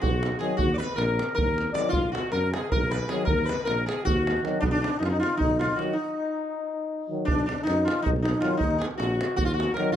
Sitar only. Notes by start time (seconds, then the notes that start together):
0.01 F#4
0.39 G#4
0.57 F#4
0.74 B4 D5
0.96 A#4
1.35 A#4
1.74 D5
1.89 F4
2.12 F#4
2.32 A#4
2.53 G#4
2.72 A#4
2.91 B4
3.09 G#4
3.25 A#4
3.45 B4
3.65 A#4
3.86 G#4
4.05 F#4
4.60 D4
4.66 B3
4.71 D4
4.82 D4
4.99 D#4
5.05 F4
5.10 D#4
5.20 F4
5.37 D#4
5.59 F4
5.76 F#4
5.93 D#4
7.25 D4
7.46 D4
7.63 D#4
7.85 F4
8.02 D#4
8.22 D#4
8.40 F4
8.57 D#4
8.78 G#4
8.98 F#4
9.36 F#4
9.45 F4
9.54 F#4
9.74 A#4
9.92 F4